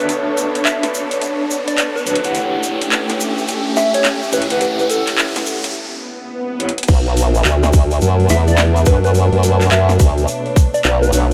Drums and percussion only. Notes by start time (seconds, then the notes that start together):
0.09 closed hi-hat, shaker
0.37 closed hi-hat, shaker
0.55 closed hi-hat, shaker
0.65 clap, shaker
0.83 snare, closed hi-hat, shaker
0.94 shaker
1.11 closed hi-hat, shaker
1.21 closed hi-hat, shaker
1.51 shaker
1.68 closed hi-hat, shaker
1.78 clap, closed hi-hat, shaker
1.97 shaker
2.07 closed hi-hat, shaker
2.15 closed hi-hat
2.24 closed hi-hat, shaker
2.35 closed hi-hat, shaker
2.63 closed hi-hat, shaker
2.81 closed hi-hat, shaker
2.92 clap, shaker
3.09 snare, closed hi-hat, shaker
3.20 shaker
3.38 shaker
3.48 closed hi-hat, shaker
3.77 snare, shaker
3.94 closed hi-hat, shaker
4.04 clap, snare, closed hi-hat, shaker
4.22 shaker
4.32 closed hi-hat, shaker
4.42 closed hi-hat
4.50 closed hi-hat, shaker
4.61 closed hi-hat, shaker
4.79 shaker
4.90 closed hi-hat, shaker
5.07 clap, closed hi-hat, shaker
5.18 clap, shaker
5.36 snare, closed hi-hat, shaker
5.46 closed hi-hat, shaker
5.64 closed hi-hat, shaker
6.60 closed hi-hat
6.69 closed hi-hat
6.78 closed hi-hat
6.83 closed hi-hat
6.88 kick, crash, shaker
7.06 open hi-hat
7.17 open hi-hat, shaker
7.35 open hi-hat, shaker
7.45 clap, open hi-hat, shaker
7.63 snare, open hi-hat, shaker
7.73 kick, open hi-hat, shaker
7.91 open hi-hat, shaker
8.01 open hi-hat, shaker
8.20 open hi-hat
8.29 snare, open hi-hat, shaker
8.48 open hi-hat, shaker
8.57 clap, snare, open hi-hat, shaker
8.76 open hi-hat, shaker
8.86 kick, open hi-hat, shaker
9.04 open hi-hat, shaker
9.15 open hi-hat, shaker
9.33 open hi-hat
9.43 open hi-hat, shaker
9.61 clap, open hi-hat, shaker
9.71 clap, open hi-hat, shaker
9.89 snare, open hi-hat, shaker
9.99 kick, open hi-hat, shaker
10.18 open hi-hat, shaker
10.28 open hi-hat, shaker
10.46 open hi-hat
10.56 kick, open hi-hat, shaker
10.74 open hi-hat, shaker
10.84 clap, open hi-hat, shaker
11.03 open hi-hat, shaker
11.13 open hi-hat, shaker